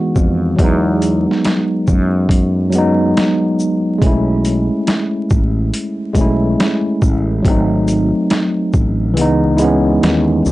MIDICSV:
0, 0, Header, 1, 4, 480
1, 0, Start_track
1, 0, Tempo, 857143
1, 328, Time_signature, 4, 2, 24, 8
1, 5891, End_track
2, 0, Start_track
2, 0, Title_t, "Tine electric piano"
2, 0, Program_c, 0, 4
2, 0, Control_c, 0, 64, 127
2, 0, Note_on_c, 0, 52, 77
2, 0, Note_on_c, 0, 56, 73
2, 0, Note_on_c, 0, 59, 74
2, 0, Note_on_c, 0, 66, 84
2, 179, Note_off_c, 0, 52, 0
2, 186, Note_off_c, 0, 56, 0
2, 192, Note_off_c, 0, 59, 0
2, 200, Note_off_c, 0, 66, 0
2, 316, Note_on_c, 0, 54, 80
2, 330, Note_on_c, 0, 56, 75
2, 336, Control_c, 0, 64, 0
2, 344, Note_on_c, 0, 59, 71
2, 359, Note_on_c, 0, 63, 93
2, 425, Control_c, 0, 64, 127
2, 1069, Note_off_c, 0, 54, 0
2, 1076, Note_off_c, 0, 56, 0
2, 1083, Note_off_c, 0, 59, 0
2, 1090, Note_off_c, 0, 63, 0
2, 1514, Note_on_c, 0, 54, 79
2, 1529, Note_on_c, 0, 56, 71
2, 1544, Note_on_c, 0, 59, 71
2, 1558, Note_on_c, 0, 63, 91
2, 2098, Note_off_c, 0, 54, 0
2, 2105, Note_off_c, 0, 56, 0
2, 2113, Note_off_c, 0, 59, 0
2, 2120, Note_off_c, 0, 63, 0
2, 2232, Note_on_c, 0, 56, 74
2, 2247, Note_on_c, 0, 57, 75
2, 2256, Control_c, 0, 64, 0
2, 2260, Note_on_c, 0, 61, 75
2, 2276, Note_on_c, 0, 64, 89
2, 2351, Control_c, 0, 64, 127
2, 2987, Note_off_c, 0, 56, 0
2, 2994, Note_off_c, 0, 57, 0
2, 3001, Note_off_c, 0, 61, 0
2, 3009, Note_off_c, 0, 64, 0
2, 3434, Note_on_c, 0, 56, 78
2, 3449, Note_on_c, 0, 57, 75
2, 3462, Note_on_c, 0, 61, 70
2, 3478, Note_on_c, 0, 64, 83
2, 4018, Note_off_c, 0, 56, 0
2, 4026, Note_off_c, 0, 57, 0
2, 4032, Note_off_c, 0, 61, 0
2, 4040, Note_off_c, 0, 64, 0
2, 4158, Note_on_c, 0, 54, 81
2, 4170, Note_on_c, 0, 57, 77
2, 4177, Control_c, 0, 64, 0
2, 4184, Note_on_c, 0, 60, 72
2, 4199, Note_on_c, 0, 63, 89
2, 4290, Control_c, 0, 64, 127
2, 4910, Note_off_c, 0, 54, 0
2, 4916, Note_off_c, 0, 57, 0
2, 4923, Note_off_c, 0, 60, 0
2, 4931, Note_off_c, 0, 63, 0
2, 5117, Note_on_c, 0, 52, 91
2, 5134, Note_on_c, 0, 56, 83
2, 5135, Control_c, 0, 64, 0
2, 5146, Note_on_c, 0, 59, 82
2, 5160, Note_on_c, 0, 63, 93
2, 5229, Control_c, 0, 64, 127
2, 5328, Note_off_c, 0, 52, 0
2, 5337, Note_off_c, 0, 56, 0
2, 5342, Note_off_c, 0, 59, 0
2, 5350, Note_off_c, 0, 63, 0
2, 5358, Note_on_c, 0, 64, 80
2, 5371, Note_on_c, 0, 56, 79
2, 5386, Note_on_c, 0, 59, 74
2, 5400, Note_on_c, 0, 61, 86
2, 5891, Note_off_c, 0, 56, 0
2, 5891, Note_off_c, 0, 59, 0
2, 5891, Note_off_c, 0, 61, 0
2, 5891, Note_off_c, 0, 64, 0
2, 5891, End_track
3, 0, Start_track
3, 0, Title_t, "Fretless electric bass"
3, 0, Program_c, 1, 35
3, 93, Note_on_c, 1, 41, 80
3, 311, Note_off_c, 1, 41, 0
3, 330, Note_on_c, 1, 40, 101
3, 700, Note_off_c, 1, 40, 0
3, 1055, Note_on_c, 1, 42, 86
3, 1749, Note_off_c, 1, 42, 0
3, 2252, Note_on_c, 1, 35, 101
3, 2621, Note_off_c, 1, 35, 0
3, 2975, Note_on_c, 1, 33, 79
3, 3193, Note_off_c, 1, 33, 0
3, 3443, Note_on_c, 1, 35, 87
3, 3666, Note_off_c, 1, 35, 0
3, 3934, Note_on_c, 1, 33, 85
3, 4152, Note_off_c, 1, 33, 0
3, 4174, Note_on_c, 1, 32, 97
3, 4542, Note_off_c, 1, 32, 0
3, 4895, Note_on_c, 1, 33, 79
3, 5134, Note_off_c, 1, 33, 0
3, 5134, Note_on_c, 1, 37, 86
3, 5589, Note_off_c, 1, 37, 0
3, 5616, Note_on_c, 1, 39, 83
3, 5833, Note_off_c, 1, 39, 0
3, 5857, Note_on_c, 1, 38, 93
3, 5891, Note_off_c, 1, 38, 0
3, 5891, End_track
4, 0, Start_track
4, 0, Title_t, "Drums"
4, 89, Note_on_c, 9, 36, 87
4, 89, Note_on_c, 9, 82, 44
4, 145, Note_off_c, 9, 36, 0
4, 145, Note_off_c, 9, 82, 0
4, 328, Note_on_c, 9, 36, 99
4, 330, Note_on_c, 9, 42, 77
4, 384, Note_off_c, 9, 36, 0
4, 386, Note_off_c, 9, 42, 0
4, 571, Note_on_c, 9, 42, 43
4, 571, Note_on_c, 9, 82, 40
4, 627, Note_off_c, 9, 42, 0
4, 627, Note_off_c, 9, 82, 0
4, 735, Note_on_c, 9, 38, 32
4, 791, Note_off_c, 9, 38, 0
4, 809, Note_on_c, 9, 42, 68
4, 813, Note_on_c, 9, 38, 116
4, 865, Note_off_c, 9, 42, 0
4, 869, Note_off_c, 9, 38, 0
4, 1050, Note_on_c, 9, 82, 47
4, 1052, Note_on_c, 9, 36, 90
4, 1106, Note_off_c, 9, 82, 0
4, 1108, Note_off_c, 9, 36, 0
4, 1283, Note_on_c, 9, 36, 89
4, 1292, Note_on_c, 9, 42, 88
4, 1339, Note_off_c, 9, 36, 0
4, 1348, Note_off_c, 9, 42, 0
4, 1525, Note_on_c, 9, 42, 49
4, 1525, Note_on_c, 9, 82, 50
4, 1581, Note_off_c, 9, 42, 0
4, 1581, Note_off_c, 9, 82, 0
4, 1775, Note_on_c, 9, 42, 58
4, 1778, Note_on_c, 9, 38, 104
4, 1831, Note_off_c, 9, 42, 0
4, 1834, Note_off_c, 9, 38, 0
4, 2013, Note_on_c, 9, 82, 43
4, 2069, Note_off_c, 9, 82, 0
4, 2250, Note_on_c, 9, 36, 96
4, 2252, Note_on_c, 9, 42, 72
4, 2306, Note_off_c, 9, 36, 0
4, 2308, Note_off_c, 9, 42, 0
4, 2491, Note_on_c, 9, 42, 42
4, 2491, Note_on_c, 9, 82, 43
4, 2547, Note_off_c, 9, 42, 0
4, 2547, Note_off_c, 9, 82, 0
4, 2728, Note_on_c, 9, 42, 66
4, 2732, Note_on_c, 9, 38, 110
4, 2784, Note_off_c, 9, 42, 0
4, 2788, Note_off_c, 9, 38, 0
4, 2969, Note_on_c, 9, 82, 50
4, 2972, Note_on_c, 9, 36, 90
4, 3025, Note_off_c, 9, 82, 0
4, 3028, Note_off_c, 9, 36, 0
4, 3212, Note_on_c, 9, 42, 88
4, 3268, Note_off_c, 9, 42, 0
4, 3442, Note_on_c, 9, 36, 80
4, 3445, Note_on_c, 9, 42, 49
4, 3445, Note_on_c, 9, 82, 47
4, 3498, Note_off_c, 9, 36, 0
4, 3501, Note_off_c, 9, 42, 0
4, 3501, Note_off_c, 9, 82, 0
4, 3695, Note_on_c, 9, 42, 64
4, 3698, Note_on_c, 9, 38, 115
4, 3751, Note_off_c, 9, 42, 0
4, 3754, Note_off_c, 9, 38, 0
4, 3931, Note_on_c, 9, 36, 92
4, 3932, Note_on_c, 9, 82, 45
4, 3987, Note_off_c, 9, 36, 0
4, 3988, Note_off_c, 9, 82, 0
4, 4170, Note_on_c, 9, 36, 97
4, 4174, Note_on_c, 9, 42, 79
4, 4226, Note_off_c, 9, 36, 0
4, 4230, Note_off_c, 9, 42, 0
4, 4413, Note_on_c, 9, 42, 40
4, 4413, Note_on_c, 9, 82, 42
4, 4469, Note_off_c, 9, 42, 0
4, 4469, Note_off_c, 9, 82, 0
4, 4649, Note_on_c, 9, 42, 64
4, 4653, Note_on_c, 9, 38, 112
4, 4705, Note_off_c, 9, 42, 0
4, 4709, Note_off_c, 9, 38, 0
4, 4891, Note_on_c, 9, 82, 46
4, 4892, Note_on_c, 9, 36, 86
4, 4947, Note_off_c, 9, 82, 0
4, 4948, Note_off_c, 9, 36, 0
4, 5135, Note_on_c, 9, 42, 96
4, 5191, Note_off_c, 9, 42, 0
4, 5367, Note_on_c, 9, 42, 50
4, 5367, Note_on_c, 9, 82, 49
4, 5423, Note_off_c, 9, 42, 0
4, 5423, Note_off_c, 9, 82, 0
4, 5618, Note_on_c, 9, 42, 65
4, 5621, Note_on_c, 9, 38, 109
4, 5674, Note_off_c, 9, 42, 0
4, 5677, Note_off_c, 9, 38, 0
4, 5854, Note_on_c, 9, 82, 44
4, 5891, Note_off_c, 9, 82, 0
4, 5891, End_track
0, 0, End_of_file